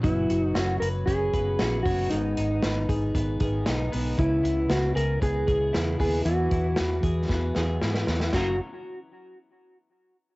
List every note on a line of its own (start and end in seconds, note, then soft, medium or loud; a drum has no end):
0.03 0.25 F#1 loud
0.03 0.43 F#2 medium
0.03 0.43 C#3 medium
0.03 2.11 F#3 medium
0.03 0.44 F#3 medium
0.03 0.44 B3 medium
0.03 0.42 C#4 medium
0.03 0.43 E4 medium
0.03 kick loud
0.03 closed hi-hat medium
0.30 0.51 F#1 medium
0.30 1.59 F#4 medium
0.30 closed hi-hat medium
0.43 1.33 F#3 soft
0.43 1.35 B3 soft
0.43 1.34 C#4 soft
0.43 0.58 D#4 medium
0.55 0.77 F#1 medium
0.55 1.06 C#4 medium
0.55 0.80 F#4 medium
0.55 snare loud
0.55 closed hi-hat medium
0.80 1.03 F#1 medium
0.80 0.87 A#4 loud
0.80 1.33 B4 medium
0.80 closed hi-hat medium
1.06 1.29 F#1 medium
1.06 1.85 C#4 medium
1.06 1.82 G#4 medium
1.06 kick medium
1.06 closed hi-hat medium
1.34 1.55 F#1 medium
1.34 1.59 C#3 medium
1.34 1.60 F#3 medium
1.34 1.61 B3 medium
1.34 1.61 C#4 medium
1.34 2.88 B4 medium
1.34 kick medium
1.34 closed hi-hat medium
1.59 1.81 A#1 medium
1.59 1.85 C#3 medium
1.59 1.86 F#3 medium
1.59 1.87 B3 medium
1.59 1.87 C#4 medium
1.59 2.17 F#4 medium
1.59 snare medium
1.59 closed hi-hat medium
1.83 2.07 F#1 medium
1.83 2.12 C#3 medium
1.83 2.17 C#4 medium
1.83 2.08 F#4 medium
1.83 kick medium
1.83 open hi-hat medium
1.87 2.12 F#3 medium
1.87 2.12 B3 medium
1.87 2.13 C#4 medium
2.10 2.33 G#1 loud
2.10 4.19 G#2 medium
2.10 2.51 G#2 medium
2.10 2.51 D#3 medium
2.10 2.51 G#3 medium
2.10 2.50 B3 medium
2.10 3.88 D#4 medium
2.10 closed hi-hat medium
2.14 2.49 D#4 medium
2.37 2.59 G#1 medium
2.37 3.65 D#4 medium
2.37 closed hi-hat medium
2.50 3.42 G#3 soft
2.50 3.43 B3 medium
2.50 3.41 D#4 medium
2.63 2.85 G#1 medium
2.63 3.14 B3 medium
2.63 snare loud
2.63 closed hi-hat medium
2.89 3.10 G#1 medium
2.89 3.40 G#4 medium
2.89 kick medium
2.89 closed hi-hat medium
3.15 3.36 G#1 medium
3.15 3.92 B3 medium
3.15 kick medium
3.15 closed hi-hat medium
3.40 3.62 G#1 medium
3.40 3.65 D#3 medium
3.40 3.66 G#3 medium
3.40 3.67 B3 medium
3.40 3.68 D#4 medium
3.40 4.95 G#4 medium
3.40 kick medium
3.40 closed hi-hat medium
3.66 3.89 B1 medium
3.66 3.91 D#3 medium
3.66 3.92 G#3 medium
3.66 3.93 B3 medium
3.66 4.24 D#4 medium
3.66 3.94 D#4 medium
3.66 snare medium
3.66 closed hi-hat medium
3.92 4.15 B1 medium
3.92 4.18 D#3 medium
3.92 4.18 G#3 medium
3.92 4.69 B3 medium
3.92 4.18 B3 medium
3.92 4.19 D#4 medium
3.92 open hi-hat medium
4.18 4.40 C#2 loud
4.18 6.25 C#3 medium
4.18 4.58 C#3 medium
4.18 4.58 G#3 medium
4.18 4.58 B3 medium
4.18 4.72 E4 medium
4.18 4.56 E4 medium
4.18 kick loud
4.18 closed hi-hat medium
4.43 4.66 C#2 medium
4.43 5.73 E4 soft
4.43 closed hi-hat medium
4.57 5.49 G#3 soft
4.57 5.49 B3 soft
4.57 5.50 E4 medium
4.69 4.92 C#2 medium
4.69 5.21 B3 medium
4.69 4.96 F#4 medium
4.69 snare loud
4.69 closed hi-hat medium
4.95 5.18 C#2 medium
4.95 5.47 G#4 medium
4.95 5.20 A#4 loud
4.95 closed hi-hat medium
5.22 5.44 C#2 medium
5.22 5.99 B3 medium
5.22 5.99 G#4 medium
5.22 kick medium
5.22 closed hi-hat medium
5.47 5.70 C#2 medium
5.47 5.73 C#3 medium
5.47 5.74 G#3 medium
5.47 5.75 B3 medium
5.47 5.75 E4 medium
5.47 7.04 G#4 medium
5.47 kick medium
5.47 closed hi-hat medium
5.73 5.96 E2 medium
5.73 5.99 C#3 medium
5.73 5.99 G#3 medium
5.73 6.01 B3 medium
5.73 6.51 E4 medium
5.73 6.01 E4 medium
5.73 snare medium
5.73 closed hi-hat medium
6.00 6.22 D#2 medium
6.00 6.26 C#3 medium
6.00 6.26 G#3 medium
6.00 6.78 B3 medium
6.00 6.26 B3 medium
6.00 6.27 E4 medium
6.00 6.25 G#4 medium
6.00 kick medium
6.00 open hi-hat medium
6.25 6.47 E2 loud
6.25 8.34 E3 medium
6.25 6.65 E3 medium
6.25 6.66 F#3 medium
6.25 6.66 B3 medium
6.25 6.65 E4 medium
6.25 8.04 F#4 medium
6.25 6.64 G#4 medium
6.25 closed hi-hat medium
6.51 6.73 E2 medium
6.51 7.81 E4 medium
6.51 kick medium
6.51 closed hi-hat medium
6.65 7.55 B3 soft
6.65 7.56 E4 soft
6.65 7.56 G#4 soft
6.76 7.00 E2 medium
6.76 7.29 B3 medium
6.76 snare loud
6.76 closed hi-hat medium
7.03 7.25 E2 medium
7.03 7.55 G#4 medium
7.03 kick medium
7.03 closed hi-hat medium
7.29 7.51 E2 medium
7.29 8.07 B3 medium
7.29 kick medium
7.29 snare medium
7.55 7.78 E2 medium
7.55 7.80 F#3 medium
7.55 7.81 B3 medium
7.55 7.82 E4 medium
7.55 8.35 G#4 medium
7.55 7.82 G#4 medium
7.55 snare medium
7.82 8.04 G#2 medium
7.82 8.07 F#3 medium
7.82 8.08 B3 medium
7.82 8.35 E4 medium
7.82 8.09 E4 medium
7.82 8.09 G#4 medium
7.82 snare medium
7.94 snare medium
8.07 8.29 E2 medium
8.07 8.34 F#3 medium
8.07 8.34 B3 medium
8.07 8.35 B3 medium
8.07 8.35 E4 medium
8.07 8.36 G#4 medium
8.07 snare medium
8.20 snare medium
8.33 8.58 F#1 medium
8.33 8.55 F#2 medium
8.33 8.55 C#3 medium
8.33 8.55 F#3 medium
8.33 8.56 A#3 medium
8.33 8.55 C#4 medium
8.33 8.56 C#4 medium
8.33 8.59 F#4 medium
8.33 8.56 F#4 medium
8.33 8.56 A#4 medium
8.33 kick medium
8.33 snare medium
8.33 crash medium